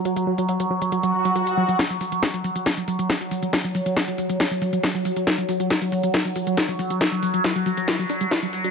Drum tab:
HH |xx-xxx-xxx-xxx-x|xxoxxxoxxxoxxxox|xxoxxxoxxxoxxxox|xxoxxxoxxxoxxxox|
SD |----------------|o---o---o---o---|o---o---o---o---|o---o---o---o---|
BD |----------------|o---o---o---o---|o---o---o---o---|o---o---o---o---|

HH |xxoxxxoxxxoxxxox|
SD |o---o---o---o---|
BD |o---o---o---o---|